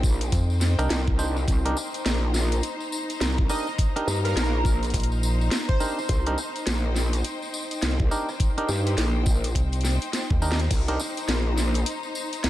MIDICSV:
0, 0, Header, 1, 7, 480
1, 0, Start_track
1, 0, Key_signature, -3, "minor"
1, 0, Tempo, 576923
1, 1229, Time_signature, 4, 2, 24, 8
1, 10398, End_track
2, 0, Start_track
2, 0, Title_t, "String section"
2, 0, Program_c, 0, 48
2, 0, Note_on_c, 0, 63, 75
2, 0, Note_on_c, 0, 72, 83
2, 0, Note_on_c, 0, 79, 65
2, 1718, Note_on_c, 0, 82, 68
2, 1743, Note_off_c, 0, 79, 0
2, 5558, Note_on_c, 0, 79, 67
2, 5585, Note_off_c, 0, 82, 0
2, 9395, Note_on_c, 0, 82, 66
2, 9425, Note_off_c, 0, 79, 0
2, 10398, Note_off_c, 0, 63, 0
2, 10398, Note_off_c, 0, 72, 0
2, 10398, Note_off_c, 0, 82, 0
2, 10398, End_track
3, 0, Start_track
3, 0, Title_t, "Digital synth lead"
3, 0, Program_c, 1, 84
3, 2910, Note_on_c, 1, 75, 98
3, 3116, Note_off_c, 1, 75, 0
3, 3533, Note_on_c, 1, 70, 102
3, 4014, Note_off_c, 1, 70, 0
3, 4730, Note_on_c, 1, 72, 104
3, 5394, Note_off_c, 1, 72, 0
3, 10398, End_track
4, 0, Start_track
4, 0, Title_t, "Clav"
4, 0, Program_c, 2, 7
4, 654, Note_on_c, 2, 63, 89
4, 654, Note_on_c, 2, 67, 91
4, 654, Note_on_c, 2, 70, 113
4, 655, Note_on_c, 2, 62, 97
4, 846, Note_off_c, 2, 63, 0
4, 846, Note_off_c, 2, 67, 0
4, 846, Note_off_c, 2, 70, 0
4, 847, Note_off_c, 2, 62, 0
4, 988, Note_on_c, 2, 62, 93
4, 989, Note_on_c, 2, 63, 80
4, 989, Note_on_c, 2, 67, 87
4, 989, Note_on_c, 2, 72, 102
4, 1139, Note_off_c, 2, 62, 0
4, 1139, Note_off_c, 2, 63, 0
4, 1139, Note_off_c, 2, 67, 0
4, 1139, Note_off_c, 2, 72, 0
4, 1376, Note_on_c, 2, 70, 100
4, 1377, Note_on_c, 2, 62, 91
4, 1377, Note_on_c, 2, 63, 81
4, 1377, Note_on_c, 2, 67, 82
4, 1476, Note_off_c, 2, 62, 0
4, 1476, Note_off_c, 2, 63, 0
4, 1476, Note_off_c, 2, 67, 0
4, 1476, Note_off_c, 2, 70, 0
4, 2909, Note_on_c, 2, 62, 83
4, 2909, Note_on_c, 2, 63, 81
4, 2909, Note_on_c, 2, 67, 77
4, 2909, Note_on_c, 2, 70, 95
4, 3059, Note_off_c, 2, 62, 0
4, 3059, Note_off_c, 2, 63, 0
4, 3059, Note_off_c, 2, 67, 0
4, 3059, Note_off_c, 2, 70, 0
4, 3294, Note_on_c, 2, 70, 104
4, 3295, Note_on_c, 2, 62, 91
4, 3295, Note_on_c, 2, 63, 86
4, 3295, Note_on_c, 2, 67, 87
4, 3395, Note_off_c, 2, 62, 0
4, 3395, Note_off_c, 2, 63, 0
4, 3395, Note_off_c, 2, 67, 0
4, 3395, Note_off_c, 2, 70, 0
4, 4827, Note_on_c, 2, 67, 77
4, 4828, Note_on_c, 2, 62, 83
4, 4828, Note_on_c, 2, 63, 77
4, 4828, Note_on_c, 2, 70, 93
4, 4978, Note_off_c, 2, 62, 0
4, 4978, Note_off_c, 2, 63, 0
4, 4978, Note_off_c, 2, 67, 0
4, 4978, Note_off_c, 2, 70, 0
4, 5213, Note_on_c, 2, 62, 92
4, 5213, Note_on_c, 2, 67, 86
4, 5214, Note_on_c, 2, 63, 85
4, 5215, Note_on_c, 2, 70, 101
4, 5314, Note_off_c, 2, 62, 0
4, 5315, Note_off_c, 2, 63, 0
4, 5315, Note_off_c, 2, 67, 0
4, 5315, Note_off_c, 2, 70, 0
4, 6749, Note_on_c, 2, 62, 86
4, 6749, Note_on_c, 2, 67, 80
4, 6749, Note_on_c, 2, 70, 93
4, 6750, Note_on_c, 2, 63, 78
4, 6899, Note_off_c, 2, 62, 0
4, 6899, Note_off_c, 2, 63, 0
4, 6899, Note_off_c, 2, 67, 0
4, 6899, Note_off_c, 2, 70, 0
4, 7135, Note_on_c, 2, 62, 89
4, 7135, Note_on_c, 2, 63, 86
4, 7135, Note_on_c, 2, 67, 82
4, 7135, Note_on_c, 2, 70, 106
4, 7235, Note_off_c, 2, 62, 0
4, 7235, Note_off_c, 2, 63, 0
4, 7235, Note_off_c, 2, 70, 0
4, 7236, Note_off_c, 2, 67, 0
4, 8668, Note_on_c, 2, 62, 83
4, 8668, Note_on_c, 2, 67, 75
4, 8669, Note_on_c, 2, 63, 76
4, 8669, Note_on_c, 2, 70, 94
4, 8818, Note_off_c, 2, 62, 0
4, 8818, Note_off_c, 2, 67, 0
4, 8819, Note_off_c, 2, 63, 0
4, 8819, Note_off_c, 2, 70, 0
4, 9054, Note_on_c, 2, 62, 90
4, 9054, Note_on_c, 2, 63, 88
4, 9054, Note_on_c, 2, 67, 83
4, 9054, Note_on_c, 2, 70, 100
4, 9155, Note_off_c, 2, 62, 0
4, 9155, Note_off_c, 2, 63, 0
4, 9155, Note_off_c, 2, 67, 0
4, 9155, Note_off_c, 2, 70, 0
4, 10398, End_track
5, 0, Start_track
5, 0, Title_t, "Analog synth bass"
5, 0, Program_c, 3, 38
5, 268, Note_on_c, 3, 41, 101
5, 631, Note_off_c, 3, 41, 0
5, 654, Note_on_c, 3, 36, 99
5, 733, Note_off_c, 3, 36, 0
5, 4107, Note_on_c, 3, 34, 101
5, 4573, Note_off_c, 3, 34, 0
5, 7946, Note_on_c, 3, 36, 100
5, 8310, Note_off_c, 3, 36, 0
5, 8573, Note_on_c, 3, 39, 103
5, 8893, Note_off_c, 3, 39, 0
5, 10398, End_track
6, 0, Start_track
6, 0, Title_t, "Wobble bass"
6, 0, Program_c, 4, 39
6, 0, Note_on_c, 4, 34, 99
6, 254, Note_off_c, 4, 34, 0
6, 751, Note_on_c, 4, 36, 92
6, 1214, Note_off_c, 4, 36, 0
6, 1230, Note_on_c, 4, 36, 99
6, 1454, Note_off_c, 4, 36, 0
6, 1711, Note_on_c, 4, 34, 95
6, 2174, Note_off_c, 4, 34, 0
6, 2668, Note_on_c, 4, 36, 96
6, 2893, Note_off_c, 4, 36, 0
6, 3389, Note_on_c, 4, 43, 98
6, 3614, Note_off_c, 4, 43, 0
6, 3628, Note_on_c, 4, 34, 95
6, 4093, Note_off_c, 4, 34, 0
6, 5068, Note_on_c, 4, 36, 99
6, 5293, Note_off_c, 4, 36, 0
6, 5548, Note_on_c, 4, 34, 98
6, 6013, Note_off_c, 4, 34, 0
6, 6510, Note_on_c, 4, 36, 99
6, 6734, Note_off_c, 4, 36, 0
6, 7227, Note_on_c, 4, 43, 100
6, 7453, Note_off_c, 4, 43, 0
6, 7468, Note_on_c, 4, 34, 95
6, 7933, Note_off_c, 4, 34, 0
6, 8908, Note_on_c, 4, 36, 98
6, 9133, Note_off_c, 4, 36, 0
6, 9386, Note_on_c, 4, 34, 98
6, 9852, Note_off_c, 4, 34, 0
6, 10349, Note_on_c, 4, 36, 99
6, 10398, Note_off_c, 4, 36, 0
6, 10398, End_track
7, 0, Start_track
7, 0, Title_t, "Drums"
7, 29, Note_on_c, 9, 36, 109
7, 35, Note_on_c, 9, 54, 103
7, 112, Note_off_c, 9, 36, 0
7, 118, Note_off_c, 9, 54, 0
7, 175, Note_on_c, 9, 42, 52
7, 178, Note_on_c, 9, 54, 38
7, 259, Note_off_c, 9, 42, 0
7, 261, Note_off_c, 9, 54, 0
7, 269, Note_on_c, 9, 36, 65
7, 269, Note_on_c, 9, 42, 79
7, 275, Note_on_c, 9, 54, 52
7, 352, Note_off_c, 9, 36, 0
7, 352, Note_off_c, 9, 42, 0
7, 358, Note_off_c, 9, 54, 0
7, 415, Note_on_c, 9, 54, 35
7, 498, Note_off_c, 9, 54, 0
7, 507, Note_on_c, 9, 54, 100
7, 510, Note_on_c, 9, 38, 66
7, 591, Note_off_c, 9, 54, 0
7, 593, Note_off_c, 9, 38, 0
7, 658, Note_on_c, 9, 42, 38
7, 659, Note_on_c, 9, 54, 45
7, 741, Note_off_c, 9, 42, 0
7, 742, Note_off_c, 9, 54, 0
7, 749, Note_on_c, 9, 54, 52
7, 752, Note_on_c, 9, 38, 125
7, 752, Note_on_c, 9, 42, 79
7, 832, Note_off_c, 9, 54, 0
7, 836, Note_off_c, 9, 38, 0
7, 836, Note_off_c, 9, 42, 0
7, 895, Note_on_c, 9, 36, 110
7, 978, Note_off_c, 9, 36, 0
7, 989, Note_on_c, 9, 54, 98
7, 1072, Note_off_c, 9, 54, 0
7, 1136, Note_on_c, 9, 54, 40
7, 1219, Note_off_c, 9, 54, 0
7, 1229, Note_on_c, 9, 36, 114
7, 1233, Note_on_c, 9, 42, 76
7, 1233, Note_on_c, 9, 54, 51
7, 1312, Note_off_c, 9, 36, 0
7, 1316, Note_off_c, 9, 42, 0
7, 1316, Note_off_c, 9, 54, 0
7, 1378, Note_on_c, 9, 42, 51
7, 1461, Note_off_c, 9, 42, 0
7, 1470, Note_on_c, 9, 54, 91
7, 1553, Note_off_c, 9, 54, 0
7, 1615, Note_on_c, 9, 54, 42
7, 1617, Note_on_c, 9, 42, 36
7, 1698, Note_off_c, 9, 54, 0
7, 1701, Note_off_c, 9, 42, 0
7, 1711, Note_on_c, 9, 38, 123
7, 1711, Note_on_c, 9, 42, 74
7, 1711, Note_on_c, 9, 54, 58
7, 1794, Note_off_c, 9, 54, 0
7, 1795, Note_off_c, 9, 38, 0
7, 1795, Note_off_c, 9, 42, 0
7, 1948, Note_on_c, 9, 54, 86
7, 1953, Note_on_c, 9, 38, 63
7, 2031, Note_off_c, 9, 54, 0
7, 2036, Note_off_c, 9, 38, 0
7, 2097, Note_on_c, 9, 42, 49
7, 2100, Note_on_c, 9, 54, 39
7, 2180, Note_off_c, 9, 42, 0
7, 2183, Note_off_c, 9, 54, 0
7, 2188, Note_on_c, 9, 54, 53
7, 2191, Note_on_c, 9, 42, 79
7, 2271, Note_off_c, 9, 54, 0
7, 2274, Note_off_c, 9, 42, 0
7, 2333, Note_on_c, 9, 54, 35
7, 2416, Note_off_c, 9, 54, 0
7, 2432, Note_on_c, 9, 54, 86
7, 2515, Note_off_c, 9, 54, 0
7, 2575, Note_on_c, 9, 54, 41
7, 2579, Note_on_c, 9, 42, 38
7, 2658, Note_off_c, 9, 54, 0
7, 2662, Note_off_c, 9, 42, 0
7, 2670, Note_on_c, 9, 54, 55
7, 2674, Note_on_c, 9, 38, 124
7, 2674, Note_on_c, 9, 42, 73
7, 2754, Note_off_c, 9, 54, 0
7, 2757, Note_off_c, 9, 38, 0
7, 2757, Note_off_c, 9, 42, 0
7, 2815, Note_on_c, 9, 36, 104
7, 2898, Note_off_c, 9, 36, 0
7, 2907, Note_on_c, 9, 54, 105
7, 2914, Note_on_c, 9, 37, 38
7, 2990, Note_off_c, 9, 54, 0
7, 2997, Note_off_c, 9, 37, 0
7, 3053, Note_on_c, 9, 54, 42
7, 3137, Note_off_c, 9, 54, 0
7, 3149, Note_on_c, 9, 36, 111
7, 3151, Note_on_c, 9, 54, 54
7, 3153, Note_on_c, 9, 42, 80
7, 3232, Note_off_c, 9, 36, 0
7, 3234, Note_off_c, 9, 54, 0
7, 3236, Note_off_c, 9, 42, 0
7, 3299, Note_on_c, 9, 42, 52
7, 3382, Note_off_c, 9, 42, 0
7, 3393, Note_on_c, 9, 54, 84
7, 3476, Note_off_c, 9, 54, 0
7, 3538, Note_on_c, 9, 42, 35
7, 3540, Note_on_c, 9, 54, 34
7, 3621, Note_off_c, 9, 42, 0
7, 3624, Note_off_c, 9, 54, 0
7, 3635, Note_on_c, 9, 38, 117
7, 3635, Note_on_c, 9, 42, 78
7, 3636, Note_on_c, 9, 54, 54
7, 3718, Note_off_c, 9, 38, 0
7, 3718, Note_off_c, 9, 42, 0
7, 3720, Note_off_c, 9, 54, 0
7, 3868, Note_on_c, 9, 36, 100
7, 3875, Note_on_c, 9, 54, 88
7, 3951, Note_off_c, 9, 36, 0
7, 3958, Note_off_c, 9, 54, 0
7, 4016, Note_on_c, 9, 42, 23
7, 4018, Note_on_c, 9, 54, 36
7, 4031, Note_off_c, 9, 42, 0
7, 4031, Note_on_c, 9, 42, 26
7, 4079, Note_off_c, 9, 42, 0
7, 4079, Note_on_c, 9, 42, 31
7, 4101, Note_off_c, 9, 54, 0
7, 4108, Note_on_c, 9, 36, 63
7, 4111, Note_off_c, 9, 42, 0
7, 4111, Note_on_c, 9, 42, 77
7, 4112, Note_on_c, 9, 54, 53
7, 4159, Note_off_c, 9, 42, 0
7, 4159, Note_on_c, 9, 42, 40
7, 4189, Note_off_c, 9, 42, 0
7, 4189, Note_on_c, 9, 42, 46
7, 4191, Note_off_c, 9, 36, 0
7, 4195, Note_off_c, 9, 54, 0
7, 4257, Note_on_c, 9, 54, 33
7, 4272, Note_off_c, 9, 42, 0
7, 4340, Note_off_c, 9, 54, 0
7, 4352, Note_on_c, 9, 54, 95
7, 4435, Note_off_c, 9, 54, 0
7, 4502, Note_on_c, 9, 54, 39
7, 4585, Note_off_c, 9, 54, 0
7, 4588, Note_on_c, 9, 38, 119
7, 4588, Note_on_c, 9, 42, 75
7, 4593, Note_on_c, 9, 54, 59
7, 4671, Note_off_c, 9, 38, 0
7, 4671, Note_off_c, 9, 42, 0
7, 4676, Note_off_c, 9, 54, 0
7, 4733, Note_on_c, 9, 36, 103
7, 4817, Note_off_c, 9, 36, 0
7, 4828, Note_on_c, 9, 54, 88
7, 4912, Note_off_c, 9, 54, 0
7, 4980, Note_on_c, 9, 54, 40
7, 5064, Note_off_c, 9, 54, 0
7, 5067, Note_on_c, 9, 36, 115
7, 5068, Note_on_c, 9, 42, 79
7, 5070, Note_on_c, 9, 54, 54
7, 5151, Note_off_c, 9, 36, 0
7, 5151, Note_off_c, 9, 42, 0
7, 5153, Note_off_c, 9, 54, 0
7, 5212, Note_on_c, 9, 42, 52
7, 5296, Note_off_c, 9, 42, 0
7, 5306, Note_on_c, 9, 54, 89
7, 5389, Note_off_c, 9, 54, 0
7, 5455, Note_on_c, 9, 42, 36
7, 5457, Note_on_c, 9, 54, 41
7, 5538, Note_off_c, 9, 42, 0
7, 5540, Note_off_c, 9, 54, 0
7, 5547, Note_on_c, 9, 38, 116
7, 5547, Note_on_c, 9, 42, 79
7, 5548, Note_on_c, 9, 54, 53
7, 5630, Note_off_c, 9, 38, 0
7, 5630, Note_off_c, 9, 42, 0
7, 5632, Note_off_c, 9, 54, 0
7, 5788, Note_on_c, 9, 38, 59
7, 5792, Note_on_c, 9, 54, 90
7, 5871, Note_off_c, 9, 38, 0
7, 5875, Note_off_c, 9, 54, 0
7, 5934, Note_on_c, 9, 42, 52
7, 5941, Note_on_c, 9, 54, 39
7, 6017, Note_off_c, 9, 42, 0
7, 6024, Note_off_c, 9, 54, 0
7, 6026, Note_on_c, 9, 54, 51
7, 6028, Note_on_c, 9, 42, 77
7, 6109, Note_off_c, 9, 54, 0
7, 6111, Note_off_c, 9, 42, 0
7, 6176, Note_on_c, 9, 54, 35
7, 6259, Note_off_c, 9, 54, 0
7, 6271, Note_on_c, 9, 54, 84
7, 6354, Note_off_c, 9, 54, 0
7, 6416, Note_on_c, 9, 42, 38
7, 6416, Note_on_c, 9, 54, 38
7, 6499, Note_off_c, 9, 42, 0
7, 6500, Note_off_c, 9, 54, 0
7, 6506, Note_on_c, 9, 54, 58
7, 6510, Note_on_c, 9, 38, 108
7, 6510, Note_on_c, 9, 42, 77
7, 6590, Note_off_c, 9, 54, 0
7, 6594, Note_off_c, 9, 38, 0
7, 6594, Note_off_c, 9, 42, 0
7, 6654, Note_on_c, 9, 36, 103
7, 6737, Note_off_c, 9, 36, 0
7, 6751, Note_on_c, 9, 54, 90
7, 6834, Note_off_c, 9, 54, 0
7, 6894, Note_on_c, 9, 54, 39
7, 6898, Note_on_c, 9, 37, 40
7, 6977, Note_off_c, 9, 54, 0
7, 6981, Note_off_c, 9, 37, 0
7, 6986, Note_on_c, 9, 54, 48
7, 6988, Note_on_c, 9, 36, 120
7, 6992, Note_on_c, 9, 42, 86
7, 7069, Note_off_c, 9, 54, 0
7, 7071, Note_off_c, 9, 36, 0
7, 7075, Note_off_c, 9, 42, 0
7, 7137, Note_on_c, 9, 42, 54
7, 7220, Note_off_c, 9, 42, 0
7, 7227, Note_on_c, 9, 54, 79
7, 7310, Note_off_c, 9, 54, 0
7, 7375, Note_on_c, 9, 54, 38
7, 7378, Note_on_c, 9, 42, 36
7, 7459, Note_off_c, 9, 54, 0
7, 7461, Note_off_c, 9, 42, 0
7, 7465, Note_on_c, 9, 54, 47
7, 7470, Note_on_c, 9, 38, 115
7, 7470, Note_on_c, 9, 42, 81
7, 7548, Note_off_c, 9, 54, 0
7, 7554, Note_off_c, 9, 38, 0
7, 7554, Note_off_c, 9, 42, 0
7, 7703, Note_on_c, 9, 54, 88
7, 7708, Note_on_c, 9, 36, 102
7, 7787, Note_off_c, 9, 54, 0
7, 7791, Note_off_c, 9, 36, 0
7, 7853, Note_on_c, 9, 54, 38
7, 7856, Note_on_c, 9, 42, 53
7, 7936, Note_off_c, 9, 54, 0
7, 7939, Note_off_c, 9, 42, 0
7, 7948, Note_on_c, 9, 36, 62
7, 7950, Note_on_c, 9, 54, 48
7, 7952, Note_on_c, 9, 42, 82
7, 8031, Note_off_c, 9, 36, 0
7, 8033, Note_off_c, 9, 54, 0
7, 8035, Note_off_c, 9, 42, 0
7, 8089, Note_on_c, 9, 54, 35
7, 8095, Note_on_c, 9, 42, 38
7, 8160, Note_off_c, 9, 42, 0
7, 8160, Note_on_c, 9, 42, 30
7, 8173, Note_off_c, 9, 54, 0
7, 8191, Note_on_c, 9, 38, 60
7, 8193, Note_on_c, 9, 54, 96
7, 8240, Note_off_c, 9, 42, 0
7, 8240, Note_on_c, 9, 42, 25
7, 8274, Note_off_c, 9, 38, 0
7, 8276, Note_off_c, 9, 54, 0
7, 8323, Note_off_c, 9, 42, 0
7, 8334, Note_on_c, 9, 54, 37
7, 8336, Note_on_c, 9, 42, 39
7, 8417, Note_off_c, 9, 54, 0
7, 8419, Note_off_c, 9, 42, 0
7, 8430, Note_on_c, 9, 38, 67
7, 8430, Note_on_c, 9, 42, 81
7, 8435, Note_on_c, 9, 54, 54
7, 8514, Note_off_c, 9, 38, 0
7, 8514, Note_off_c, 9, 42, 0
7, 8518, Note_off_c, 9, 54, 0
7, 8573, Note_on_c, 9, 36, 106
7, 8657, Note_off_c, 9, 36, 0
7, 8668, Note_on_c, 9, 54, 89
7, 8750, Note_on_c, 9, 38, 100
7, 8751, Note_off_c, 9, 54, 0
7, 8809, Note_on_c, 9, 54, 34
7, 8816, Note_on_c, 9, 42, 36
7, 8833, Note_off_c, 9, 38, 0
7, 8892, Note_off_c, 9, 54, 0
7, 8899, Note_off_c, 9, 42, 0
7, 8908, Note_on_c, 9, 36, 119
7, 8908, Note_on_c, 9, 54, 57
7, 8909, Note_on_c, 9, 42, 86
7, 8909, Note_on_c, 9, 49, 75
7, 8991, Note_off_c, 9, 36, 0
7, 8991, Note_off_c, 9, 54, 0
7, 8993, Note_off_c, 9, 42, 0
7, 8993, Note_off_c, 9, 49, 0
7, 9055, Note_on_c, 9, 42, 57
7, 9138, Note_off_c, 9, 42, 0
7, 9148, Note_on_c, 9, 54, 100
7, 9231, Note_off_c, 9, 54, 0
7, 9294, Note_on_c, 9, 54, 41
7, 9297, Note_on_c, 9, 42, 38
7, 9377, Note_off_c, 9, 54, 0
7, 9380, Note_off_c, 9, 42, 0
7, 9386, Note_on_c, 9, 54, 53
7, 9391, Note_on_c, 9, 38, 122
7, 9391, Note_on_c, 9, 42, 84
7, 9469, Note_off_c, 9, 54, 0
7, 9474, Note_off_c, 9, 38, 0
7, 9474, Note_off_c, 9, 42, 0
7, 9630, Note_on_c, 9, 38, 62
7, 9631, Note_on_c, 9, 54, 99
7, 9713, Note_off_c, 9, 38, 0
7, 9714, Note_off_c, 9, 54, 0
7, 9769, Note_on_c, 9, 54, 38
7, 9777, Note_on_c, 9, 42, 54
7, 9852, Note_off_c, 9, 54, 0
7, 9860, Note_off_c, 9, 42, 0
7, 9869, Note_on_c, 9, 54, 50
7, 9870, Note_on_c, 9, 42, 85
7, 9952, Note_off_c, 9, 54, 0
7, 9953, Note_off_c, 9, 42, 0
7, 10010, Note_on_c, 9, 54, 35
7, 10093, Note_off_c, 9, 54, 0
7, 10109, Note_on_c, 9, 54, 84
7, 10193, Note_off_c, 9, 54, 0
7, 10257, Note_on_c, 9, 42, 40
7, 10259, Note_on_c, 9, 54, 42
7, 10340, Note_off_c, 9, 42, 0
7, 10342, Note_off_c, 9, 54, 0
7, 10349, Note_on_c, 9, 38, 123
7, 10349, Note_on_c, 9, 42, 83
7, 10356, Note_on_c, 9, 54, 51
7, 10398, Note_off_c, 9, 38, 0
7, 10398, Note_off_c, 9, 42, 0
7, 10398, Note_off_c, 9, 54, 0
7, 10398, End_track
0, 0, End_of_file